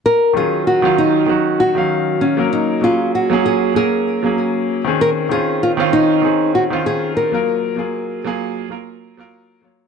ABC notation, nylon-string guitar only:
X:1
M:4/4
L:1/8
Q:"Swing 16ths" 1/4=97
K:Ebdor
V:1 name="Nylon-string guitar"
B A G E2 G2 D | E F G A A3 z | B A F E2 G A B- | B6 z2 |]